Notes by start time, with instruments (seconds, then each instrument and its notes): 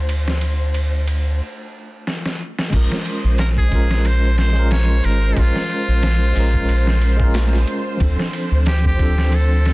Already playing: analog synth bass D2, tine electric piano A3 D4 F4 C5, string section C5
0.09 ride
0.28 snare
0.41 ride
0.74 ride
1.08 ride
2.07 snare
2.26 snare
2.59 snare
2.70 analog synth bass A#1, tine electric piano G#3 C#4, string section C5, kick, crash, ride
2.75 tine electric piano F4 A#4
2.92 snare
3.05 ride
3.24 analog synth bass A#1
3.38 muted trumpet A#4, snare, ride
3.57 muted trumpet G#4, kick
3.68 analog synth bass A#1, tine electric piano G#3 C#4, kick, ride
3.73 tine electric piano F4 A#4
3.91 snare
4.05 muted trumpet C5, ride
4.38 muted trumpet C5, snare, ride
4.53 tine electric piano G#3 C#4, ride
4.57 tine electric piano F4 A#4
4.71 muted trumpet C#5, snare, ride
5.04 analog synth bass G#1, muted trumpet A#4, ride
5.34 analog synth bass A#1, tine electric piano G#3 C#4, kick, ride
5.38 muted trumpet F4, tine electric piano F4 A#4
5.56 snare
5.70 ride
5.88 analog synth bass A#1
6.03 snare, ride
6.32 analog synth bass A#1, tine electric piano G#3 C#4, open hi-hat
6.37 tine electric piano F4 A#4
6.54 kick
6.69 ride
6.87 snare
7.01 ride
7.16 tine electric piano G#3 C#4, kick
7.21 tine electric piano F4 A#4
7.34 snare, ride
7.53 snare
7.68 ride
7.97 analog synth bass D2, tine electric piano F3 C4, kick, ride
8.02 tine electric piano D4 A4
8.19 snare
8.33 ride
8.51 analog synth bass D2
8.66 muted trumpet G4, snare, ride
8.84 muted trumpet G4, kick
8.96 analog synth bass D2, tine electric piano F3 C4, kick, ride
9.01 tine electric piano D4 A4
9.18 snare
9.32 muted trumpet A4, ride
9.65 snare, ride